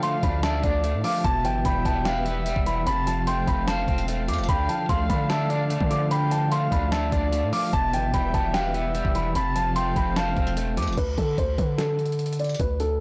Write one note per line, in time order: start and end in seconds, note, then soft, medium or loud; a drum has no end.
0.00 0.19 D3 loud
0.00 0.64 D3 medium
0.00 1.21 D3 medium
0.00 0.84 F3 medium
0.00 0.83 A3 loud
0.00 1.21 D4 medium
0.00 1.21 A4 medium
0.00 1.21 F5 medium
0.00 0.41 F5 medium
0.00 0.22 C6 medium
0.00 closed hi-hat medium
0.23 0.62 D2 loud
0.23 0.62 D4 medium
0.23 0.42 B5 medium
0.23 kick loud
0.23 closed hi-hat medium
0.43 1.25 D5 loud
0.43 0.63 E5 medium
0.43 1.00 A5 medium
0.43 snare loud
0.43 closed hi-hat medium
0.63 0.96 D2 loud
0.63 1.24 D4 medium
0.63 1.02 D5 medium
0.63 kick loud
0.63 closed hi-hat medium
0.84 1.25 A3 medium
0.84 closed hi-hat loud
0.94 1.04 A2 loud
1.04 1.24 F3 medium
1.04 1.23 F5 medium
1.04 1.23 D6 loud
1.04 open hi-hat medium
1.24 1.46 E1 loud
1.24 2.26 B2 medium
1.24 2.85 E3 medium
1.24 2.85 B3 medium
1.24 2.85 G4 medium
1.24 2.85 E5 medium
1.24 1.44 A5 loud
1.24 1.63 A5 loud
1.24 kick loud
1.24 closed hi-hat medium
1.45 1.64 G1 loud
1.45 2.46 E3 medium
1.45 1.64 G5 medium
1.45 closed hi-hat medium
1.65 1.84 E1 loud
1.65 2.45 G3 medium
1.65 2.03 G5 medium
1.65 1.84 B5 medium
1.65 kick loud
1.65 closed hi-hat medium
1.85 2.53 E1 loud
1.85 2.25 B3 medium
1.85 2.04 A5 medium
1.85 kick loud
1.85 closed hi-hat medium
2.05 2.87 B4 loud
2.05 2.25 F5 medium
2.05 2.62 G5 loud
2.05 snare loud
2.05 closed hi-hat medium
2.26 2.87 B3 medium
2.26 2.83 E5 medium
2.26 closed hi-hat medium
2.46 2.87 G3 loud
2.46 closed hi-hat loud
2.56 2.85 E1 loud
2.56 kick loud
2.66 2.87 E3 medium
2.66 2.85 B5 medium
2.66 closed hi-hat medium
2.86 3.45 F1 loud
2.86 3.88 C3 medium
2.86 4.47 F3 medium
2.86 4.47 C4 medium
2.86 7.69 A4 medium
2.86 7.69 F5 loud
2.86 3.25 A5 loud
2.86 3.06 B5 loud
2.86 closed hi-hat medium
3.07 4.08 F3 medium
3.07 3.26 A5 medium
3.07 closed hi-hat medium
3.27 4.07 A3 medium
3.27 3.65 G5 medium
3.27 3.46 C6 medium
3.27 closed hi-hat medium
3.47 3.86 F1 loud
3.47 3.87 C4 medium
3.47 3.67 B5 medium
3.47 kick medium
3.47 closed hi-hat medium
3.67 4.49 C5 loud
3.67 4.06 F5 medium
3.67 4.25 A5 medium
3.67 snare loud
3.67 closed hi-hat medium
3.88 4.30 E1 loud
3.88 4.49 C4 medium
3.88 kick loud
3.88 closed hi-hat soft
3.98 closed hi-hat medium
4.08 4.49 A3 medium
4.08 closed hi-hat medium
4.28 4.40 F2 loud
4.28 4.48 F3 medium
4.28 4.48 D6 medium
4.28 closed hi-hat medium
4.28 open hi-hat medium
4.33 closed hi-hat medium
4.38 4.48 E1 loud
4.38 closed hi-hat medium
4.44 closed hi-hat medium
4.49 4.68 D2 loud
4.49 7.70 D3 medium
4.49 4.89 D3 loud
4.49 7.70 D4 medium
4.49 4.87 G5 loud
4.49 4.68 B5 loud
4.49 kick loud
4.49 closed hi-hat medium
4.69 5.70 F3 medium
4.69 4.88 A5 medium
4.69 closed hi-hat medium
4.89 5.09 D2 loud
4.89 5.69 A3 medium
4.89 5.28 F5 medium
4.89 5.08 C6 medium
4.89 kick loud
4.89 closed hi-hat medium
5.09 5.78 D3 loud
5.09 5.49 D4 medium
5.09 5.29 B5 medium
5.09 kick loud
5.09 closed hi-hat medium
5.29 6.31 D5 loud
5.29 5.49 E5 medium
5.29 5.87 A5 medium
5.29 snare loud
5.29 closed hi-hat medium
5.50 6.51 D4 medium
5.50 6.07 D5 medium
5.50 closed hi-hat medium
5.70 6.51 A3 loud
5.70 closed hi-hat medium
5.81 6.68 D3 loud
5.81 kick loud
5.90 6.30 F3 medium
5.90 6.10 D6 medium
5.90 closed hi-hat medium
6.11 7.12 D3 medium
6.11 6.49 G5 loud
6.11 6.30 B5 loud
6.11 closed hi-hat medium
6.31 7.32 F3 medium
6.31 6.51 A5 medium
6.31 closed hi-hat medium
6.52 7.31 A3 loud
6.52 6.90 F5 medium
6.52 6.71 C6 medium
6.52 closed hi-hat medium
6.72 7.11 D2 loud
6.72 7.11 D4 medium
6.72 6.91 B5 medium
6.72 kick loud
6.72 closed hi-hat medium
6.92 7.73 D5 loud
6.92 7.11 E5 medium
6.92 7.49 A5 medium
6.92 snare loud
6.92 closed hi-hat medium
7.12 7.44 D2 loud
7.12 7.73 D4 medium
7.12 7.51 D5 medium
7.12 kick loud
7.12 closed hi-hat medium
7.33 7.73 A3 medium
7.33 closed hi-hat medium
7.43 7.52 A2 loud
7.53 7.73 F3 medium
7.53 7.72 F5 medium
7.53 7.72 D6 loud
7.53 open hi-hat medium
7.73 7.95 E1 loud
7.73 8.75 B2 medium
7.73 9.34 E3 medium
7.73 9.34 B3 medium
7.73 9.34 G4 medium
7.73 9.34 E5 medium
7.73 7.92 A5 loud
7.73 8.11 A5 loud
7.73 kick loud
7.73 closed hi-hat medium
7.93 8.13 G1 loud
7.93 8.95 E3 medium
7.93 8.13 G5 medium
7.93 closed hi-hat medium
8.14 8.33 E1 loud
8.14 8.94 G3 medium
8.14 8.52 G5 medium
8.14 8.33 B5 medium
8.14 kick loud
8.14 closed hi-hat medium
8.34 9.02 E1 loud
8.34 8.74 B3 medium
8.34 8.53 A5 medium
8.34 kick medium
8.34 closed hi-hat medium
8.54 9.35 B4 loud
8.54 8.73 F5 medium
8.54 9.11 G5 loud
8.54 snare loud
8.54 closed hi-hat medium
8.74 9.36 B3 medium
8.74 9.32 E5 medium
8.74 closed hi-hat medium
8.95 9.35 G3 medium
8.95 closed hi-hat medium
9.05 9.34 E1 loud
9.05 kick loud
9.15 9.35 E3 medium
9.15 9.34 B5 medium
9.15 closed hi-hat medium
9.35 9.94 F1 loud
9.35 10.36 C3 medium
9.35 10.96 F3 medium
9.35 10.96 C4 medium
9.35 10.96 A4 medium
9.35 10.96 F5 medium
9.35 9.73 A5 loud
9.35 9.55 B5 loud
9.35 closed hi-hat medium
9.55 10.57 F3 medium
9.55 9.75 A5 loud
9.55 closed hi-hat medium
9.76 10.56 A3 medium
9.76 10.14 G5 medium
9.76 9.95 C6 medium
9.76 closed hi-hat medium
9.96 10.35 F1 loud
9.96 10.35 C4 medium
9.96 10.15 B5 medium
9.96 kick loud
9.96 closed hi-hat medium
10.16 10.97 C5 loud
10.16 10.54 F5 medium
10.16 10.74 A5 medium
10.16 snare loud
10.16 closed hi-hat medium
10.37 10.79 E1 loud
10.37 10.97 C4 medium
10.37 kick loud
10.37 closed hi-hat soft
10.47 closed hi-hat medium
10.57 10.98 A3 medium
10.57 closed hi-hat medium
10.77 10.89 F2 loud
10.77 10.97 F3 medium
10.77 10.96 D6 medium
10.77 closed hi-hat medium
10.77 open hi-hat medium
10.82 closed hi-hat medium
10.87 10.97 E1 loud
10.87 closed hi-hat medium
10.93 closed hi-hat medium
10.97 11.17 D2 loud
10.97 11.17 B4 loud
10.97 kick loud
10.97 closed hi-hat medium
10.97 crash loud
11.18 11.37 D3 loud
11.18 11.37 A4 medium
11.18 kick medium
11.18 closed hi-hat medium
11.38 11.57 D2 loud
11.38 11.57 C5 medium
11.38 kick loud
11.38 closed hi-hat medium
11.58 12.56 D3 loud
11.58 11.77 B4 medium
11.58 kick medium
11.58 closed hi-hat medium
11.78 12.35 A4 medium
11.78 snare loud
11.78 closed hi-hat medium
11.99 closed hi-hat soft
12.06 closed hi-hat soft
12.12 closed hi-hat soft
12.19 closed hi-hat medium
12.26 closed hi-hat medium
12.33 closed hi-hat medium
12.39 12.59 D5 medium
12.39 closed hi-hat soft
12.44 closed hi-hat medium
12.49 closed hi-hat medium
12.54 closed hi-hat medium
12.60 13.00 D2 loud
12.60 12.79 B4 loud
12.60 kick loud
12.60 closed hi-hat medium
12.80 12.99 A4 medium
12.80 closed hi-hat medium